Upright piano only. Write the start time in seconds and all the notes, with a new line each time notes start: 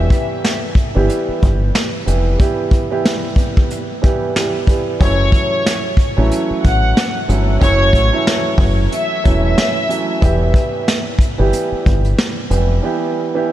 Already playing: E3 G3 B3 E4 G4
0.95 E3 G3 B3 E4 G4
2.06 E3 G3 B3 E4 G4
2.39 E3 G3 B3 E4 G4
2.90 E3 G3 B3 E4 G4
4.01 E3 G3 B3 E4 G4
4.35 E3 G3 B3 E4 G4
4.66 E3 G3 B3 E4 G4
5.00 E3 F#3 A3 C#4 E4
6.16 E3 F#3 A3 C#4 E4
7.28 E3 F#3 A3 C#4 E4
7.59 E3 F#3 A3 C#4 E4
8.12 E3 F#3 A3 C#4 E4
9.24 E3 F#3 A3 C#4 E4
9.56 E3 F#3 A3 C#4 E4
9.89 E3 F#3 A3 C#4 E4
10.21 E3 G3 B3 E4 G4
11.38 E3 G3 B3 E4 G4
12.50 E3 G3 B3 E4 G4
12.82 E3 G3 B3 E4 G4
13.34 E3 G3 B3 E4 G4